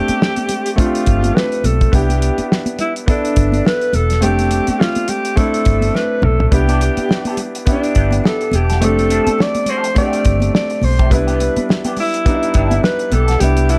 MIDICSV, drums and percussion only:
0, 0, Header, 1, 2, 480
1, 0, Start_track
1, 0, Key_signature, 0, "major"
1, 0, Tempo, 574163
1, 1611, Time_signature, 4, 2, 24, 8
1, 11525, End_track
2, 0, Start_track
2, 0, Title_t, "Drums"
2, 70, Note_on_c, 9, 42, 44
2, 77, Note_on_c, 9, 63, 65
2, 153, Note_off_c, 9, 42, 0
2, 161, Note_off_c, 9, 63, 0
2, 181, Note_on_c, 9, 62, 29
2, 185, Note_on_c, 9, 38, 95
2, 265, Note_off_c, 9, 62, 0
2, 269, Note_off_c, 9, 38, 0
2, 305, Note_on_c, 9, 42, 53
2, 313, Note_on_c, 9, 63, 62
2, 388, Note_off_c, 9, 42, 0
2, 396, Note_off_c, 9, 63, 0
2, 407, Note_on_c, 9, 42, 68
2, 413, Note_on_c, 9, 62, 26
2, 413, Note_on_c, 9, 64, 57
2, 491, Note_off_c, 9, 42, 0
2, 497, Note_off_c, 9, 62, 0
2, 497, Note_off_c, 9, 64, 0
2, 551, Note_on_c, 9, 42, 48
2, 634, Note_off_c, 9, 42, 0
2, 655, Note_on_c, 9, 36, 98
2, 655, Note_on_c, 9, 42, 77
2, 657, Note_on_c, 9, 62, 30
2, 738, Note_off_c, 9, 36, 0
2, 739, Note_off_c, 9, 42, 0
2, 741, Note_off_c, 9, 62, 0
2, 794, Note_on_c, 9, 42, 51
2, 878, Note_off_c, 9, 42, 0
2, 890, Note_on_c, 9, 42, 67
2, 893, Note_on_c, 9, 62, 30
2, 897, Note_on_c, 9, 36, 74
2, 973, Note_off_c, 9, 42, 0
2, 976, Note_off_c, 9, 62, 0
2, 980, Note_off_c, 9, 36, 0
2, 1024, Note_on_c, 9, 63, 73
2, 1035, Note_on_c, 9, 42, 44
2, 1108, Note_off_c, 9, 63, 0
2, 1119, Note_off_c, 9, 42, 0
2, 1141, Note_on_c, 9, 62, 30
2, 1144, Note_on_c, 9, 38, 102
2, 1224, Note_off_c, 9, 62, 0
2, 1228, Note_off_c, 9, 38, 0
2, 1271, Note_on_c, 9, 42, 38
2, 1354, Note_off_c, 9, 42, 0
2, 1371, Note_on_c, 9, 62, 31
2, 1371, Note_on_c, 9, 63, 65
2, 1371, Note_on_c, 9, 64, 60
2, 1374, Note_on_c, 9, 42, 64
2, 1455, Note_off_c, 9, 62, 0
2, 1455, Note_off_c, 9, 63, 0
2, 1455, Note_off_c, 9, 64, 0
2, 1458, Note_off_c, 9, 42, 0
2, 1513, Note_on_c, 9, 42, 45
2, 1515, Note_on_c, 9, 36, 75
2, 1597, Note_off_c, 9, 42, 0
2, 1599, Note_off_c, 9, 36, 0
2, 1613, Note_on_c, 9, 36, 90
2, 1615, Note_on_c, 9, 42, 87
2, 1618, Note_on_c, 9, 62, 30
2, 1618, Note_on_c, 9, 64, 66
2, 1697, Note_off_c, 9, 36, 0
2, 1699, Note_off_c, 9, 42, 0
2, 1702, Note_off_c, 9, 62, 0
2, 1702, Note_off_c, 9, 64, 0
2, 1749, Note_on_c, 9, 63, 41
2, 1755, Note_on_c, 9, 42, 48
2, 1833, Note_off_c, 9, 63, 0
2, 1839, Note_off_c, 9, 42, 0
2, 1857, Note_on_c, 9, 42, 64
2, 1941, Note_off_c, 9, 42, 0
2, 1990, Note_on_c, 9, 42, 44
2, 1992, Note_on_c, 9, 63, 64
2, 2074, Note_off_c, 9, 42, 0
2, 2076, Note_off_c, 9, 63, 0
2, 2106, Note_on_c, 9, 38, 96
2, 2190, Note_off_c, 9, 38, 0
2, 2223, Note_on_c, 9, 63, 65
2, 2225, Note_on_c, 9, 42, 50
2, 2306, Note_off_c, 9, 63, 0
2, 2308, Note_off_c, 9, 42, 0
2, 2330, Note_on_c, 9, 42, 71
2, 2331, Note_on_c, 9, 62, 26
2, 2331, Note_on_c, 9, 64, 57
2, 2413, Note_off_c, 9, 42, 0
2, 2414, Note_off_c, 9, 62, 0
2, 2414, Note_off_c, 9, 64, 0
2, 2476, Note_on_c, 9, 42, 50
2, 2560, Note_off_c, 9, 42, 0
2, 2575, Note_on_c, 9, 36, 107
2, 2577, Note_on_c, 9, 42, 82
2, 2577, Note_on_c, 9, 62, 28
2, 2658, Note_off_c, 9, 36, 0
2, 2660, Note_off_c, 9, 42, 0
2, 2661, Note_off_c, 9, 62, 0
2, 2715, Note_on_c, 9, 42, 49
2, 2799, Note_off_c, 9, 42, 0
2, 2811, Note_on_c, 9, 42, 66
2, 2816, Note_on_c, 9, 36, 77
2, 2894, Note_off_c, 9, 42, 0
2, 2899, Note_off_c, 9, 36, 0
2, 2944, Note_on_c, 9, 63, 73
2, 2956, Note_on_c, 9, 42, 45
2, 3028, Note_off_c, 9, 63, 0
2, 3040, Note_off_c, 9, 42, 0
2, 3052, Note_on_c, 9, 62, 30
2, 3064, Note_on_c, 9, 38, 107
2, 3136, Note_off_c, 9, 62, 0
2, 3148, Note_off_c, 9, 38, 0
2, 3189, Note_on_c, 9, 42, 38
2, 3273, Note_off_c, 9, 42, 0
2, 3286, Note_on_c, 9, 63, 66
2, 3286, Note_on_c, 9, 64, 61
2, 3290, Note_on_c, 9, 42, 58
2, 3370, Note_off_c, 9, 63, 0
2, 3370, Note_off_c, 9, 64, 0
2, 3374, Note_off_c, 9, 42, 0
2, 3427, Note_on_c, 9, 42, 43
2, 3441, Note_on_c, 9, 38, 29
2, 3511, Note_off_c, 9, 42, 0
2, 3524, Note_off_c, 9, 38, 0
2, 3528, Note_on_c, 9, 42, 86
2, 3532, Note_on_c, 9, 64, 65
2, 3611, Note_off_c, 9, 42, 0
2, 3616, Note_off_c, 9, 64, 0
2, 3665, Note_on_c, 9, 63, 38
2, 3668, Note_on_c, 9, 42, 46
2, 3749, Note_off_c, 9, 63, 0
2, 3752, Note_off_c, 9, 42, 0
2, 3768, Note_on_c, 9, 42, 62
2, 3772, Note_on_c, 9, 62, 33
2, 3852, Note_off_c, 9, 42, 0
2, 3855, Note_off_c, 9, 62, 0
2, 3905, Note_on_c, 9, 42, 45
2, 3914, Note_on_c, 9, 63, 70
2, 3989, Note_off_c, 9, 42, 0
2, 3998, Note_off_c, 9, 63, 0
2, 4014, Note_on_c, 9, 62, 30
2, 4022, Note_on_c, 9, 38, 100
2, 4098, Note_off_c, 9, 62, 0
2, 4106, Note_off_c, 9, 38, 0
2, 4140, Note_on_c, 9, 42, 51
2, 4149, Note_on_c, 9, 63, 61
2, 4223, Note_off_c, 9, 42, 0
2, 4233, Note_off_c, 9, 63, 0
2, 4245, Note_on_c, 9, 42, 67
2, 4253, Note_on_c, 9, 62, 27
2, 4253, Note_on_c, 9, 64, 55
2, 4329, Note_off_c, 9, 42, 0
2, 4337, Note_off_c, 9, 62, 0
2, 4337, Note_off_c, 9, 64, 0
2, 4387, Note_on_c, 9, 42, 48
2, 4471, Note_off_c, 9, 42, 0
2, 4490, Note_on_c, 9, 42, 80
2, 4491, Note_on_c, 9, 36, 95
2, 4496, Note_on_c, 9, 62, 30
2, 4573, Note_off_c, 9, 42, 0
2, 4575, Note_off_c, 9, 36, 0
2, 4579, Note_off_c, 9, 62, 0
2, 4631, Note_on_c, 9, 42, 47
2, 4714, Note_off_c, 9, 42, 0
2, 4725, Note_on_c, 9, 42, 61
2, 4728, Note_on_c, 9, 62, 29
2, 4733, Note_on_c, 9, 36, 78
2, 4808, Note_off_c, 9, 42, 0
2, 4811, Note_off_c, 9, 62, 0
2, 4817, Note_off_c, 9, 36, 0
2, 4861, Note_on_c, 9, 63, 69
2, 4867, Note_on_c, 9, 42, 46
2, 4944, Note_off_c, 9, 63, 0
2, 4951, Note_off_c, 9, 42, 0
2, 4970, Note_on_c, 9, 62, 31
2, 4976, Note_on_c, 9, 38, 56
2, 5054, Note_off_c, 9, 62, 0
2, 5060, Note_off_c, 9, 38, 0
2, 5201, Note_on_c, 9, 63, 64
2, 5201, Note_on_c, 9, 64, 66
2, 5209, Note_on_c, 9, 45, 78
2, 5284, Note_off_c, 9, 63, 0
2, 5284, Note_off_c, 9, 64, 0
2, 5292, Note_off_c, 9, 45, 0
2, 5351, Note_on_c, 9, 43, 79
2, 5434, Note_off_c, 9, 43, 0
2, 5449, Note_on_c, 9, 42, 88
2, 5449, Note_on_c, 9, 62, 29
2, 5449, Note_on_c, 9, 64, 67
2, 5450, Note_on_c, 9, 36, 97
2, 5533, Note_off_c, 9, 42, 0
2, 5533, Note_off_c, 9, 62, 0
2, 5533, Note_off_c, 9, 64, 0
2, 5534, Note_off_c, 9, 36, 0
2, 5580, Note_on_c, 9, 63, 41
2, 5590, Note_on_c, 9, 42, 47
2, 5663, Note_off_c, 9, 63, 0
2, 5674, Note_off_c, 9, 42, 0
2, 5694, Note_on_c, 9, 42, 65
2, 5777, Note_off_c, 9, 42, 0
2, 5827, Note_on_c, 9, 42, 45
2, 5831, Note_on_c, 9, 63, 64
2, 5911, Note_off_c, 9, 42, 0
2, 5914, Note_off_c, 9, 63, 0
2, 5929, Note_on_c, 9, 62, 32
2, 5941, Note_on_c, 9, 38, 108
2, 6012, Note_off_c, 9, 62, 0
2, 6025, Note_off_c, 9, 38, 0
2, 6062, Note_on_c, 9, 42, 54
2, 6063, Note_on_c, 9, 63, 62
2, 6145, Note_off_c, 9, 42, 0
2, 6146, Note_off_c, 9, 63, 0
2, 6163, Note_on_c, 9, 42, 68
2, 6164, Note_on_c, 9, 64, 57
2, 6247, Note_off_c, 9, 42, 0
2, 6248, Note_off_c, 9, 64, 0
2, 6312, Note_on_c, 9, 42, 47
2, 6395, Note_off_c, 9, 42, 0
2, 6408, Note_on_c, 9, 62, 31
2, 6409, Note_on_c, 9, 42, 80
2, 6412, Note_on_c, 9, 36, 101
2, 6491, Note_off_c, 9, 62, 0
2, 6492, Note_off_c, 9, 42, 0
2, 6496, Note_off_c, 9, 36, 0
2, 6550, Note_on_c, 9, 42, 50
2, 6634, Note_off_c, 9, 42, 0
2, 6646, Note_on_c, 9, 42, 64
2, 6654, Note_on_c, 9, 36, 75
2, 6729, Note_off_c, 9, 42, 0
2, 6738, Note_off_c, 9, 36, 0
2, 6778, Note_on_c, 9, 63, 70
2, 6792, Note_on_c, 9, 42, 44
2, 6861, Note_off_c, 9, 63, 0
2, 6875, Note_off_c, 9, 42, 0
2, 6887, Note_on_c, 9, 62, 30
2, 6901, Note_on_c, 9, 38, 107
2, 6970, Note_off_c, 9, 62, 0
2, 6984, Note_off_c, 9, 38, 0
2, 7029, Note_on_c, 9, 42, 40
2, 7113, Note_off_c, 9, 42, 0
2, 7119, Note_on_c, 9, 62, 29
2, 7119, Note_on_c, 9, 63, 67
2, 7119, Note_on_c, 9, 64, 65
2, 7132, Note_on_c, 9, 42, 61
2, 7202, Note_off_c, 9, 62, 0
2, 7202, Note_off_c, 9, 63, 0
2, 7202, Note_off_c, 9, 64, 0
2, 7216, Note_off_c, 9, 42, 0
2, 7270, Note_on_c, 9, 42, 47
2, 7284, Note_on_c, 9, 38, 33
2, 7354, Note_off_c, 9, 42, 0
2, 7367, Note_off_c, 9, 38, 0
2, 7371, Note_on_c, 9, 42, 91
2, 7372, Note_on_c, 9, 62, 30
2, 7372, Note_on_c, 9, 64, 64
2, 7454, Note_off_c, 9, 42, 0
2, 7455, Note_off_c, 9, 62, 0
2, 7455, Note_off_c, 9, 64, 0
2, 7508, Note_on_c, 9, 63, 39
2, 7514, Note_on_c, 9, 42, 47
2, 7592, Note_off_c, 9, 63, 0
2, 7598, Note_off_c, 9, 42, 0
2, 7604, Note_on_c, 9, 62, 33
2, 7611, Note_on_c, 9, 42, 66
2, 7687, Note_off_c, 9, 62, 0
2, 7695, Note_off_c, 9, 42, 0
2, 7747, Note_on_c, 9, 42, 46
2, 7748, Note_on_c, 9, 63, 69
2, 7831, Note_off_c, 9, 42, 0
2, 7832, Note_off_c, 9, 63, 0
2, 7847, Note_on_c, 9, 62, 31
2, 7862, Note_on_c, 9, 38, 103
2, 7930, Note_off_c, 9, 62, 0
2, 7945, Note_off_c, 9, 38, 0
2, 7981, Note_on_c, 9, 42, 53
2, 7984, Note_on_c, 9, 63, 65
2, 8065, Note_off_c, 9, 42, 0
2, 8067, Note_off_c, 9, 63, 0
2, 8076, Note_on_c, 9, 62, 27
2, 8076, Note_on_c, 9, 64, 58
2, 8079, Note_on_c, 9, 42, 69
2, 8160, Note_off_c, 9, 62, 0
2, 8160, Note_off_c, 9, 64, 0
2, 8163, Note_off_c, 9, 42, 0
2, 8226, Note_on_c, 9, 42, 50
2, 8310, Note_off_c, 9, 42, 0
2, 8322, Note_on_c, 9, 62, 32
2, 8328, Note_on_c, 9, 42, 81
2, 8330, Note_on_c, 9, 36, 102
2, 8405, Note_off_c, 9, 62, 0
2, 8411, Note_off_c, 9, 42, 0
2, 8414, Note_off_c, 9, 36, 0
2, 8470, Note_on_c, 9, 42, 48
2, 8553, Note_off_c, 9, 42, 0
2, 8561, Note_on_c, 9, 62, 31
2, 8566, Note_on_c, 9, 42, 66
2, 8574, Note_on_c, 9, 36, 73
2, 8645, Note_off_c, 9, 62, 0
2, 8650, Note_off_c, 9, 42, 0
2, 8657, Note_off_c, 9, 36, 0
2, 8696, Note_on_c, 9, 63, 73
2, 8710, Note_on_c, 9, 42, 45
2, 8779, Note_off_c, 9, 63, 0
2, 8794, Note_off_c, 9, 42, 0
2, 8818, Note_on_c, 9, 38, 113
2, 8902, Note_off_c, 9, 38, 0
2, 8944, Note_on_c, 9, 42, 39
2, 9028, Note_off_c, 9, 42, 0
2, 9042, Note_on_c, 9, 62, 29
2, 9042, Note_on_c, 9, 63, 64
2, 9042, Note_on_c, 9, 64, 63
2, 9051, Note_on_c, 9, 46, 43
2, 9126, Note_off_c, 9, 62, 0
2, 9126, Note_off_c, 9, 63, 0
2, 9126, Note_off_c, 9, 64, 0
2, 9135, Note_off_c, 9, 46, 0
2, 9190, Note_on_c, 9, 42, 47
2, 9192, Note_on_c, 9, 36, 74
2, 9273, Note_off_c, 9, 42, 0
2, 9275, Note_off_c, 9, 36, 0
2, 9290, Note_on_c, 9, 36, 92
2, 9292, Note_on_c, 9, 62, 30
2, 9292, Note_on_c, 9, 64, 65
2, 9293, Note_on_c, 9, 42, 88
2, 9373, Note_off_c, 9, 36, 0
2, 9376, Note_off_c, 9, 42, 0
2, 9376, Note_off_c, 9, 62, 0
2, 9376, Note_off_c, 9, 64, 0
2, 9427, Note_on_c, 9, 63, 37
2, 9430, Note_on_c, 9, 42, 47
2, 9511, Note_off_c, 9, 63, 0
2, 9513, Note_off_c, 9, 42, 0
2, 9533, Note_on_c, 9, 42, 66
2, 9533, Note_on_c, 9, 62, 33
2, 9616, Note_off_c, 9, 62, 0
2, 9617, Note_off_c, 9, 42, 0
2, 9668, Note_on_c, 9, 42, 45
2, 9676, Note_on_c, 9, 63, 67
2, 9752, Note_off_c, 9, 42, 0
2, 9760, Note_off_c, 9, 63, 0
2, 9775, Note_on_c, 9, 62, 30
2, 9784, Note_on_c, 9, 38, 98
2, 9858, Note_off_c, 9, 62, 0
2, 9867, Note_off_c, 9, 38, 0
2, 9902, Note_on_c, 9, 42, 52
2, 9905, Note_on_c, 9, 63, 65
2, 9986, Note_off_c, 9, 42, 0
2, 9989, Note_off_c, 9, 63, 0
2, 10004, Note_on_c, 9, 46, 50
2, 10006, Note_on_c, 9, 62, 28
2, 10006, Note_on_c, 9, 64, 60
2, 10087, Note_off_c, 9, 46, 0
2, 10090, Note_off_c, 9, 62, 0
2, 10090, Note_off_c, 9, 64, 0
2, 10150, Note_on_c, 9, 42, 51
2, 10234, Note_off_c, 9, 42, 0
2, 10249, Note_on_c, 9, 42, 80
2, 10250, Note_on_c, 9, 36, 102
2, 10252, Note_on_c, 9, 62, 28
2, 10332, Note_off_c, 9, 42, 0
2, 10333, Note_off_c, 9, 36, 0
2, 10336, Note_off_c, 9, 62, 0
2, 10390, Note_on_c, 9, 42, 50
2, 10473, Note_off_c, 9, 42, 0
2, 10483, Note_on_c, 9, 42, 69
2, 10492, Note_on_c, 9, 36, 77
2, 10493, Note_on_c, 9, 62, 30
2, 10566, Note_off_c, 9, 42, 0
2, 10576, Note_off_c, 9, 36, 0
2, 10577, Note_off_c, 9, 62, 0
2, 10623, Note_on_c, 9, 63, 72
2, 10627, Note_on_c, 9, 42, 46
2, 10707, Note_off_c, 9, 63, 0
2, 10711, Note_off_c, 9, 42, 0
2, 10730, Note_on_c, 9, 62, 32
2, 10734, Note_on_c, 9, 38, 109
2, 10814, Note_off_c, 9, 62, 0
2, 10817, Note_off_c, 9, 38, 0
2, 10862, Note_on_c, 9, 42, 40
2, 10946, Note_off_c, 9, 42, 0
2, 10965, Note_on_c, 9, 42, 58
2, 10967, Note_on_c, 9, 62, 30
2, 10967, Note_on_c, 9, 63, 69
2, 10967, Note_on_c, 9, 64, 64
2, 11049, Note_off_c, 9, 42, 0
2, 11050, Note_off_c, 9, 62, 0
2, 11050, Note_off_c, 9, 63, 0
2, 11050, Note_off_c, 9, 64, 0
2, 11102, Note_on_c, 9, 42, 47
2, 11115, Note_on_c, 9, 38, 33
2, 11186, Note_off_c, 9, 42, 0
2, 11199, Note_off_c, 9, 38, 0
2, 11206, Note_on_c, 9, 42, 86
2, 11212, Note_on_c, 9, 62, 29
2, 11212, Note_on_c, 9, 64, 67
2, 11290, Note_off_c, 9, 42, 0
2, 11296, Note_off_c, 9, 62, 0
2, 11296, Note_off_c, 9, 64, 0
2, 11342, Note_on_c, 9, 42, 47
2, 11348, Note_on_c, 9, 63, 39
2, 11426, Note_off_c, 9, 42, 0
2, 11431, Note_off_c, 9, 63, 0
2, 11446, Note_on_c, 9, 62, 32
2, 11447, Note_on_c, 9, 42, 64
2, 11525, Note_off_c, 9, 42, 0
2, 11525, Note_off_c, 9, 62, 0
2, 11525, End_track
0, 0, End_of_file